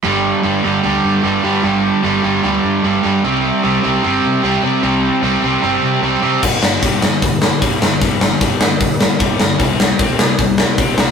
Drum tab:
CC |--------|--------|--------|--------|
HH |--------|--------|--------|--------|
SD |--------|--------|--------|--------|
BD |--------|--------|--------|--------|

CC |x-------|--------|--------|
HH |--o-o-o-|o-o-o-o-|o-o-o-o-|
SD |-o-o-o-o|-o-o-o-o|-o-o-o-o|
BD |o-o-o-o-|o-o-o-o-|o-o-o-o-|